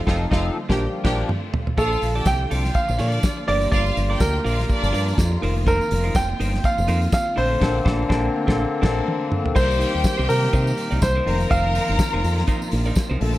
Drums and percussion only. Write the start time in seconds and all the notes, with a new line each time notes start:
0.07 kick, snare
0.32 kick, snare
0.70 kick, snare
1.05 kick, snare, crash
1.29 mid tom
1.54 floor tom
1.67 floor tom
1.78 kick, closed hi-hat, tambourine
1.92 tambourine
2.02 open hi-hat, tambourine
2.25 kick, snare, closed hi-hat, tambourine
2.51 open hi-hat, tambourine
2.65 snare, tambourine
2.75 kick, closed hi-hat, tambourine
2.89 tambourine
2.99 open hi-hat, tambourine
3.12 tambourine
3.23 kick, snare, closed hi-hat, tambourine
3.48 open hi-hat
3.61 tambourine
3.72 kick, closed hi-hat, tambourine
3.86 tambourine
3.97 open hi-hat, tambourine
4.20 kick, snare, closed hi-hat, tambourine
4.46 open hi-hat, tambourine
4.59 snare, tambourine
4.69 kick, closed hi-hat, tambourine
4.84 tambourine
4.93 open hi-hat, tambourine
5.08 tambourine
5.18 kick, snare, closed hi-hat, tambourine
5.43 open hi-hat
5.67 kick, closed hi-hat, tambourine
5.81 tambourine
5.91 open hi-hat, tambourine
6.15 kick, snare, closed hi-hat, tambourine
6.40 open hi-hat, tambourine
6.55 snare
6.64 kick, closed hi-hat, tambourine
6.78 tambourine
6.88 open hi-hat, tambourine
7.02 tambourine
7.12 kick, snare, closed hi-hat, tambourine
7.37 open hi-hat
7.62 kick, snare, crash
7.86 kick, snare
8.10 kick, snare
8.48 kick, snare
8.83 kick, snare, crash
9.08 high tom
9.32 mid tom
9.46 floor tom
9.56 kick, crash, tambourine
9.71 tambourine
9.80 open hi-hat, tambourine
10.04 kick, snare, closed hi-hat, tambourine
10.30 open hi-hat, tambourine
10.44 snare
10.53 kick, closed hi-hat, tambourine
10.67 tambourine
10.77 open hi-hat, tambourine
10.91 tambourine
11.02 kick, snare, closed hi-hat, tambourine
11.27 open hi-hat
11.40 tambourine
11.51 kick, closed hi-hat, tambourine
11.75 open hi-hat, tambourine
11.99 kick, snare, closed hi-hat, tambourine
12.24 open hi-hat, tambourine
12.38 snare
12.47 kick, closed hi-hat, tambourine
12.62 tambourine
12.71 open hi-hat, tambourine
12.85 tambourine
12.96 kick, snare, closed hi-hat, tambourine
13.21 open hi-hat
13.34 tambourine